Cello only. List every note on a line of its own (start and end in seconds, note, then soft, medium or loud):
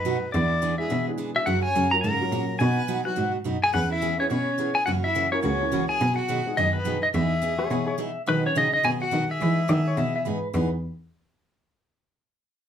0.00 0.23 F#2 medium
0.35 0.80 E2 medium
0.91 1.36 B2 medium
1.47 1.70 F#2 medium
1.75 2.00 F#2 medium
2.04 2.28 G#2 medium
2.32 2.56 A#2 medium
2.61 3.06 B2 medium
3.18 3.42 G#2 medium
3.46 3.70 F#2 medium
3.74 4.19 E2 medium
4.31 4.76 B2 medium
4.88 5.33 F#2 medium
5.45 5.90 C#2 medium
6.01 6.46 B2 medium
6.58 7.03 F#2 medium
7.15 7.60 E2 medium
7.71 8.16 B2 medium
8.28 8.55 D#3 medium
8.57 8.84 C#3 medium
8.85 9.12 B2 medium
9.13 9.40 D#3 medium
9.41 9.69 E3 medium
9.69 9.97 D#3 loud
9.97 10.25 B2 medium
10.27 10.54 G#2 medium
10.54 10.70 E2 loud